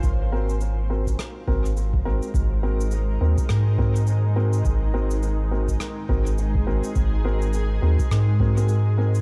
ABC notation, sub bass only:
X:1
M:4/4
L:1/8
Q:"Swing 16ths" 1/4=104
K:Abmix
V:1 name="Sub bass" clef=bass
A,,,4 z A,,,2 A,,, | A,,,3 E,, A,,4 | A,,,4 z A,,,2 A,,, | A,,,3 E,, A,,4 |]